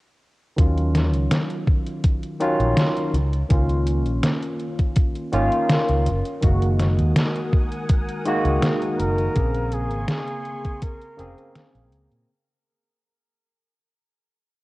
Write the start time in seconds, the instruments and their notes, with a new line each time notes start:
0.56 fretless electric bass D#2, tine electric piano D#3 F#3 C#4 F4, kick, closed hi-hat
0.77 closed hi-hat
0.95 snare, closed hi-hat
1.13 fretless electric bass C#2, closed hi-hat
1.31 snare, closed hi-hat
1.50 closed hi-hat
1.68 kick
1.87 closed hi-hat
2.04 kick, closed hi-hat
2.23 closed hi-hat
2.40 tine electric piano D#3 F#3 C#4 F4, closed hi-hat
2.60 fretless electric bass A#1, closed hi-hat
2.77 snare, closed hi-hat
2.97 closed hi-hat
3.13 fretless electric bass C#2, closed hi-hat
3.33 closed hi-hat
3.49 fretless electric bass C#2, tine electric piano D#3 A#3 C#4 F4, kick, closed hi-hat
3.69 closed hi-hat
3.87 closed hi-hat
4.06 fretless electric bass A#1, closed hi-hat
4.23 snare, closed hi-hat
4.43 closed hi-hat
4.60 closed hi-hat
4.79 kick, closed hi-hat
4.96 kick, closed hi-hat
5.16 closed hi-hat
5.32 fretless electric bass G#1, tine electric piano D#3 A#3 C#4 F4, closed hi-hat
5.52 closed hi-hat
5.69 snare, closed hi-hat
5.89 fretless electric bass C#2, closed hi-hat
6.06 fretless electric bass F#1, closed hi-hat
6.25 closed hi-hat
6.41 fretless electric bass F#1, tine electric piano D#3 G#3 A#3 F#4, string machine A#4 F#5 G#5 D#6, kick, closed hi-hat
6.62 closed hi-hat
6.80 snare, closed hi-hat
6.99 fretless electric bass D#2, closed hi-hat
7.16 snare, closed hi-hat
7.36 closed hi-hat
7.53 kick
7.72 closed hi-hat
7.89 kick, closed hi-hat
8.09 closed hi-hat
8.25 tine electric piano D#3 G#3 A#3 F#4, closed hi-hat
8.45 fretless electric bass C#2, closed hi-hat
8.63 snare, closed hi-hat
8.82 closed hi-hat
8.99 fretless electric bass F#1, flugelhorn A#4, closed hi-hat
9.18 closed hi-hat
9.35 fretless electric bass A#1, tine electric piano C#3 A#3 C4 G#4, string machine G#5 C6 C#6, kick, closed hi-hat
9.54 closed hi-hat
9.72 flugelhorn G#4, closed hi-hat
9.91 fretless electric bass G#1, closed hi-hat
10.08 flugelhorn G#4, snare, closed hi-hat
10.28 closed hi-hat
10.45 closed hi-hat
10.65 kick, closed hi-hat
10.82 flugelhorn A#4, kick, closed hi-hat
11.01 closed hi-hat
11.17 fretless electric bass F1, tine electric piano C#3 A#3 C4 G#4, closed hi-hat
11.38 closed hi-hat
11.55 snare, closed hi-hat
11.75 fretless electric bass A#1, closed hi-hat
11.92 fretless electric bass C#2, closed hi-hat
12.11 fretless electric bass A#2, closed hi-hat